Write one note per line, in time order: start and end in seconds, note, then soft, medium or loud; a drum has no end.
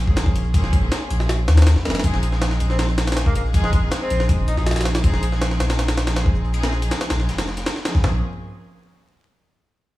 0.00 0.90 A#1 medium
0.07 0.52 F3 medium
0.07 0.52 A#3 medium
0.07 0.52 C4 medium
0.07 0.52 C#4 medium
0.07 0.52 G#4 medium
0.07 kick medium
0.16 snare loud
0.16 closed hi-hat medium
0.16 shaker medium
0.26 kick loud
0.35 closed hi-hat medium
0.35 shaker medium
0.44 closed hi-hat soft
0.54 0.80 F3 loud
0.54 0.80 A#3 medium
0.54 0.80 C4 medium
0.54 0.80 C#4 medium
0.54 0.80 G#4 loud
0.54 kick loud
0.54 closed hi-hat medium
0.54 shaker medium
0.64 snare soft
0.73 kick loud
0.73 closed hi-hat medium
0.73 shaker medium
0.82 1.55 F3 medium
0.82 1.55 A#3 medium
0.82 1.55 C4 medium
0.82 1.55 C#4 medium
0.82 1.55 G#4 medium
0.91 snare loud
0.91 closed hi-hat medium
0.91 shaker medium
1.10 1.46 A#1 loud
1.10 closed hi-hat medium
1.10 shaker medium
1.20 snare medium
1.29 snare loud
1.29 closed hi-hat medium
1.29 shaker medium
1.48 1.76 D#2 medium
1.48 snare loud
1.48 closed hi-hat medium
1.48 shaker medium
1.57 snare medium
1.57 closed hi-hat medium
1.62 snare medium
1.62 closed hi-hat medium
1.67 snare loud
1.67 closed hi-hat medium
1.67 shaker medium
1.76 1.87 G#1 loud
1.76 snare soft
1.76 snare loud
1.85 2.02 F1 medium
1.85 2.02 F3 medium
1.85 2.02 A#3 medium
1.85 2.02 C4 medium
1.85 2.02 C#4 medium
1.85 2.02 G#4 medium
1.85 snare medium
1.85 closed hi-hat medium
1.85 shaker medium
1.90 snare medium
1.90 closed hi-hat medium
1.95 snare medium
1.95 closed hi-hat medium
1.99 snare medium
1.99 closed hi-hat medium
2.04 2.59 A#1 loud
2.04 2.30 F3 loud
2.04 2.30 G#3 medium
2.04 2.30 C4 medium
2.04 2.30 D#4 medium
2.04 2.30 G#4 loud
2.04 kick loud
2.04 closed hi-hat medium
2.04 shaker medium
2.14 snare medium
2.23 closed hi-hat medium
2.23 shaker medium
2.32 3.05 F3 medium
2.32 3.05 G#3 medium
2.32 3.05 C4 medium
2.32 3.05 D#4 medium
2.32 3.05 G#4 medium
2.32 snare soft
2.42 snare loud
2.42 closed hi-hat medium
2.42 shaker medium
2.51 snare medium
2.60 3.90 A#1 medium
2.60 closed hi-hat medium
2.60 shaker medium
2.70 2.76 C4 medium
2.70 snare soft
2.79 2.85 C4 medium
2.79 snare loud
2.79 closed hi-hat medium
2.79 shaker medium
2.89 snare soft
2.97 snare medium
2.97 snare loud
2.97 closed hi-hat medium
2.97 shaker medium
3.07 3.52 F3 medium
3.07 3.52 G#3 medium
3.07 3.52 C4 medium
3.07 3.52 D#4 medium
3.07 3.52 G#4 medium
3.07 snare medium
3.07 closed hi-hat medium
3.12 snare medium
3.12 closed hi-hat medium
3.17 snare loud
3.17 closed hi-hat medium
3.17 shaker medium
3.26 3.32 A#3 medium
3.26 kick loud
3.35 3.41 A#3 medium
3.35 closed hi-hat medium
3.35 shaker medium
3.46 closed hi-hat soft
3.53 3.80 F3 loud
3.53 3.80 G#3 medium
3.53 3.80 C4 medium
3.53 3.80 D#4 medium
3.53 3.80 G#4 loud
3.53 kick loud
3.53 closed hi-hat medium
3.53 shaker loud
3.64 3.69 G#3 medium
3.64 snare soft
3.72 3.79 G#3 medium
3.72 kick loud
3.72 closed hi-hat medium
3.72 shaker medium
3.82 4.55 F3 medium
3.82 4.55 G#3 medium
3.82 4.55 C4 medium
3.82 4.55 D#4 medium
3.82 4.55 G#4 medium
3.91 snare loud
3.91 closed hi-hat medium
3.91 shaker medium
4.01 4.23 C4 medium
4.10 4.27 A#1 medium
4.10 closed hi-hat medium
4.10 shaker medium
4.20 snare medium
4.29 4.56 A#1 loud
4.29 kick loud
4.29 closed hi-hat medium
4.29 shaker medium
4.47 4.54 D#4 medium
4.47 closed hi-hat medium
4.47 shaker medium
4.57 5.59 A#1 medium
4.57 5.02 F3 medium
4.57 5.02 G#3 medium
4.57 5.02 C4 medium
4.57 5.02 D#4 medium
4.57 4.63 D#4 medium
4.57 5.02 G#4 medium
4.57 snare soft
4.66 snare medium
4.66 closed hi-hat medium
4.66 shaker medium
4.71 snare medium
4.71 closed hi-hat medium
4.76 snare medium
4.76 snare loud
4.76 closed hi-hat medium
4.81 snare medium
4.81 closed hi-hat medium
4.85 snare loud
4.85 closed hi-hat medium
4.85 shaker medium
4.95 snare loud
4.95 closed hi-hat medium
5.04 5.30 F3 loud
5.04 5.30 G#3 medium
5.04 5.30 C4 medium
5.04 5.30 D#4 loud
5.04 5.30 G#4 loud
5.04 kick loud
5.04 closed hi-hat medium
5.04 shaker medium
5.14 snare medium
5.23 closed hi-hat medium
5.23 shaker medium
5.32 6.05 F3 medium
5.32 6.05 G#3 medium
5.32 6.05 C4 medium
5.32 6.05 D#4 medium
5.32 6.05 G#4 medium
5.32 snare soft
5.42 snare loud
5.42 closed hi-hat medium
5.42 shaker medium
5.51 snare medium
5.59 6.90 A#1 loud
5.59 snare loud
5.59 closed hi-hat medium
5.59 shaker medium
5.70 snare loud
5.70 closed hi-hat medium
5.78 snare loud
5.78 closed hi-hat medium
5.78 shaker medium
5.88 snare loud
5.88 closed hi-hat medium
5.98 snare loud
5.98 closed hi-hat medium
5.98 shaker medium
6.07 6.52 F3 medium
6.07 6.52 G#3 medium
6.07 6.52 C4 medium
6.07 6.52 D#4 medium
6.07 6.52 G#4 medium
6.07 snare loud
6.07 snare soft
6.07 closed hi-hat medium
6.16 snare loud
6.16 closed hi-hat medium
6.16 shaker medium
6.26 kick loud
6.35 shaker medium
6.45 closed hi-hat soft
6.53 6.80 F3 loud
6.53 6.80 G#3 medium
6.53 6.80 C4 medium
6.53 6.80 D#4 medium
6.53 6.80 G#4 loud
6.53 closed hi-hat medium
6.53 shaker medium
6.63 snare loud
6.63 closed hi-hat medium
6.73 snare soft
6.73 shaker medium
6.82 7.55 F3 medium
6.82 7.55 G#3 medium
6.82 7.55 C4 medium
6.82 7.55 D#4 medium
6.82 7.55 G#4 loud
6.82 closed hi-hat medium
6.91 snare loud
6.91 closed hi-hat medium
6.91 shaker medium
7.01 snare loud
7.01 closed hi-hat medium
7.10 7.31 A#1 medium
7.10 snare loud
7.10 closed hi-hat medium
7.10 shaker medium
7.20 snare soft
7.29 7.65 F1 medium
7.29 snare loud
7.29 closed hi-hat medium
7.29 shaker medium
7.38 snare loud
7.38 closed hi-hat medium
7.38 shaker medium
7.47 snare soft
7.47 snare loud
7.47 shaker medium
7.57 snare loud
7.57 closed hi-hat medium
7.57 shaker medium
7.66 snare loud
7.66 closed hi-hat medium
7.66 shaker medium
7.76 snare soft
7.76 snare loud
7.76 shaker medium
7.85 8.02 F3 medium
7.85 8.02 G#3 medium
7.85 8.02 C4 medium
7.85 8.02 D#4 medium
7.85 8.02 G#4 medium
7.85 snare loud
7.85 closed hi-hat medium
7.85 shaker medium
7.95 kick medium
7.95 snare loud
7.95 shaker medium
8.04 8.21 A#1 medium
8.04 8.18 F3 medium
8.04 8.18 A#3 medium
8.04 8.18 C4 medium
8.04 8.18 C#4 medium
8.04 8.18 G#4 loud
8.04 snare loud
8.04 floor tom loud